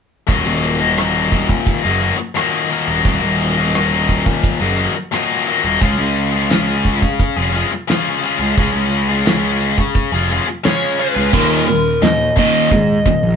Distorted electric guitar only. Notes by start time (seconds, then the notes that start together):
0.27 D#2 A#2 D#3 F#3 A#3 D#4
0.80 D#3 F#3 A#3 D#4
0.97 D#2 A#2 D#3 F#3 A#3 D#4
1.49 muted distorted electric guitar stroke
1.83 D#3 F#3 A#3 D#4
2.00 D#3 F#3 A#3 D#4
2.18 muted distorted electric guitar stroke
2.35 D#2 A#2 D#3 F#3 A#3 D#4
2.70 D#3 F#3 A#3 D#4
2.87 D#3 F#3 A#3 D#4
3.04 D#2 A#2 D#3 F#3 A#3 D#4
3.56 D#3 F#3 A#3 D#4
3.74 D#2 A#2 D#3 F#3 A#3 D#4
4.26 muted distorted electric guitar stroke
4.60 D#3 F#3 A#3 D#4
4.77 D#3 F#3 A#3 D#4
4.95 muted distorted electric guitar stroke
5.11 D#2 A#2 D#3 F#3 A#3 D#4
5.46 D#3 F#3 A#3 D#4
5.64 D#3 F#3 A#3 D#4
5.81 C#3 G#3 C#4 F4 G#4
6.32 C#4 F4 G#4
6.49 C#3 G#3 C#4 F4 G#4
7.02 muted distorted electric guitar stroke
7.36 C#4 F4 G#4
7.53 G#3 C#4 F4 G#4
7.72 muted distorted electric guitar stroke
7.88 C#3 G#3 C#4 F4 G#4
8.22 G#3 C#4 F4 G#4
8.40 C#4 F4 G#4
8.57 C#3 G#3 C#4 F4 G#4
9.09 C#4 F4 G#4
9.26 C#3 G#3 C#4 F4 G#4
9.79 muted distorted electric guitar stroke
10.12 C#4 F4 G#4
10.30 G#3 C#4 F4 G#4
10.47 muted distorted electric guitar stroke
10.64 C#3 G#3 C#4 F4 G#4
10.98 G#3 C#4 F4 G#4
11.15 C#4 F4 G#4
11.32 D#2 A#2 D#3
11.67 D#2 A#2
12.02 D#2 A#2
12.36 D#2 A#2 D#3
12.71 D#2 A#2
13.06 D#2 A#2